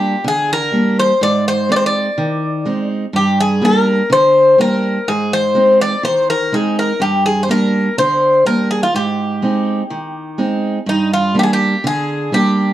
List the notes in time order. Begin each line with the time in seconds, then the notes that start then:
Already playing: G3 A#3 D4 G4
0.24 D3 G#4
0.53 A#4
0.72 G3 A#3 D4
0.99 C5
1.21 G#2 D5
1.48 C5
1.69 G#3 C4 D#4 D5
1.76 C5
1.86 D5
2.18 D#3
2.65 G#3 C4 D#4
3.13 G2 G4
3.40 G#4
3.61 G3 A#3 D4 A#4
4.10 D3 C5
4.58 G3 A#3 D4 A#4
5.08 G#2 G#4
5.33 C5
5.55 G#3 C4 D#4
5.82 D5
6.03 D#3 C5
6.30 A#4
6.52 G#3 C4 D#4 G#4
6.79 A#4
7.00 G2 G4
7.26 G#4
7.43 C5
7.49 G3 A#3 D4 A#4
7.98 D3 C5
8.46 G3 A#3 D4 A#4
8.71 G#4
8.83 F4
8.94 G#2 G4
9.42 G#3 C4 D#4
9.90 D#3
10.38 G#3 C4 D#4
10.86 G2 D#4
11.13 F4
11.35 G3 A#3 D4
11.39 G4
11.43 G#4
11.53 G4
11.84 D3 G#4
12.32 G3 A#3 D4 G4